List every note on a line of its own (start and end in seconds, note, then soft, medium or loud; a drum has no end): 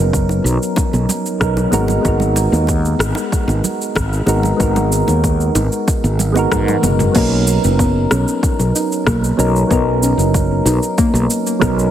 0.00 0.39 F#1 medium
0.00 1.40 F#3 medium
0.00 1.41 B3 medium
0.00 1.41 C#4 medium
0.00 1.43 D#4 medium
0.00 1.43 A#4 medium
0.13 kick medium
0.13 cabasa soft
0.29 high bongo soft
0.29 cabasa soft
0.44 0.57 B1 medium
0.44 cabasa medium
0.63 cabasa soft
0.76 kick loud
0.76 high bongo medium
0.76 cabasa soft
0.93 1.05 B1 medium
0.93 high conga medium
0.93 cabasa soft
1.09 high bongo medium
1.09 low conga medium
1.09 cabasa medium
1.26 cabasa soft
1.40 1.65 B1 medium
1.40 1.54 F#3 medium
1.40 1.55 B3 medium
1.40 1.55 C#4 medium
1.40 1.55 D#4 medium
1.40 1.56 A#4 medium
1.40 kick medium
1.40 cross-stick medium
1.40 cabasa soft
1.57 high bongo medium
1.57 cabasa soft
1.71 1.97 G#1 medium
1.71 2.00 G#3 medium
1.71 2.00 B3 medium
1.71 2.01 D#4 medium
1.71 2.01 F#4 medium
1.71 2.02 A#4 medium
1.71 high conga medium
1.71 cabasa medium
1.88 high bongo medium
1.88 low conga medium
1.88 cabasa soft
2.01 2.46 G#1 medium
2.01 4.23 G#3 medium
2.01 4.23 B3 medium
2.01 4.24 D#4 medium
2.01 kick loud
2.01 cabasa soft
2.06 4.25 F#4 medium
2.06 4.26 A#4 medium
2.20 low conga medium
2.20 cabasa soft
2.36 high bongo medium
2.36 cabasa medium
2.52 2.94 D#2 medium
2.52 high conga medium
2.52 cabasa soft
2.67 kick medium
2.67 high bongo medium
2.67 cabasa soft
2.85 cabasa soft
2.99 3.12 G#1 loud
2.99 cross-stick medium
2.99 cabasa medium
3.15 high bongo medium
3.15 cabasa soft
3.32 kick loud
3.32 cabasa soft
3.48 3.60 G#1 medium
3.48 high bongo soft
3.48 high conga medium
3.48 cabasa soft
3.64 low conga medium
3.64 cabasa medium
3.82 cabasa soft
3.95 4.20 G#1 medium
3.95 kick medium
3.95 cross-stick medium
3.95 high bongo medium
3.95 cabasa soft
4.13 cabasa soft
4.26 4.51 G#1 medium
4.26 4.55 G#3 medium
4.26 4.56 B3 medium
4.26 4.56 D#4 medium
4.26 4.56 F#4 medium
4.26 4.57 A#4 medium
4.26 high bongo medium
4.26 high conga medium
4.26 cabasa medium
4.43 low conga medium
4.43 cabasa soft
4.57 5.02 G#1 medium
4.57 6.31 G#3 medium
4.57 6.32 B3 medium
4.57 6.32 D#4 medium
4.57 kick loud
4.57 cabasa soft
4.61 6.33 F#4 medium
4.61 6.34 A#4 medium
4.76 high bongo medium
4.76 low conga medium
4.76 cabasa soft
4.92 cabasa medium
5.08 5.49 D#2 medium
5.08 high bongo soft
5.08 high conga medium
5.08 cabasa soft
5.24 kick medium
5.24 cabasa soft
5.41 cabasa soft
5.55 5.68 G#1 loud
5.55 high bongo medium
5.55 cabasa medium
5.72 cabasa soft
5.88 kick loud
5.88 high bongo medium
5.88 cabasa soft
6.04 6.45 G#1 medium
6.04 high conga medium
6.04 cabasa soft
6.19 low conga medium
6.19 cabasa medium
6.32 7.10 G#3 medium
6.32 7.11 B3 medium
6.32 7.11 D#4 medium
6.32 high bongo medium
6.37 7.12 F#4 medium
6.37 7.13 A#4 medium
6.37 cabasa soft
6.52 6.76 G#2 medium
6.52 kick medium
6.52 cross-stick medium
6.52 high tom medium
6.52 cabasa soft
6.68 high tom medium
6.68 high bongo medium
6.68 cabasa soft
6.83 7.07 F#1 medium
6.83 mid tom medium
6.83 high conga medium
6.83 cabasa medium
6.99 mid tom medium
6.99 low conga medium
6.99 cabasa soft
7.12 7.57 B1 medium
7.12 9.33 F#3 medium
7.12 9.34 B3 medium
7.12 9.35 C#4 medium
7.12 kick loud
7.12 crash loud
7.12 cabasa soft
7.16 7.44 A#3 loud
7.16 9.36 D#4 medium
7.16 9.36 A#4 medium
7.47 cabasa medium
7.64 8.05 F#1 medium
7.64 cabasa soft
7.79 8.08 B3 medium
7.79 kick loud
7.79 cabasa soft
8.11 8.24 B1 medium
8.11 8.40 C#4 medium
8.11 cross-stick medium
8.11 cabasa medium
8.28 cabasa soft
8.43 kick loud
8.43 cabasa soft
8.59 8.71 B1 medium
8.59 cabasa soft
8.75 9.05 D#4 medium
8.75 cabasa medium
8.92 cabasa soft
9.06 9.31 B1 medium
9.06 9.35 A#3 loud
9.06 kick loud
9.06 cross-stick medium
9.06 cabasa soft
9.24 cabasa soft
9.37 9.63 B1 medium
9.37 9.66 F#3 medium
9.37 9.66 B3 medium
9.37 9.67 C#4 medium
9.37 9.67 D#4 medium
9.37 9.67 A#4 medium
9.37 cabasa medium
9.56 cabasa soft
9.67 10.12 B1 loud
9.67 11.57 F#3 medium
9.67 11.57 B3 medium
9.67 11.58 C#4 medium
9.67 kick loud
9.71 10.00 B3 loud
9.71 11.59 D#4 medium
9.71 11.60 A#4 medium
9.71 cabasa soft
10.03 10.32 C#4 medium
10.03 cabasa medium
10.18 10.59 F#1 medium
10.18 cabasa soft
10.34 kick loud
10.34 cabasa soft
10.65 10.78 B1 loud
10.65 10.97 D#4 medium
10.65 cabasa medium
10.83 cabasa soft
10.98 11.27 A#3 loud
10.98 kick loud
10.98 cabasa soft
11.14 11.26 B1 medium
11.14 cabasa soft
11.30 cabasa medium
11.47 cabasa soft
11.59 11.86 B1 medium
11.59 11.75 F#3 medium
11.59 11.75 B3 medium
11.59 11.90 B3 medium
11.59 11.75 C#4 medium
11.59 11.76 D#4 medium
11.59 11.76 A#4 medium
11.59 kick loud
11.59 cross-stick medium
11.59 cabasa soft
11.79 cabasa soft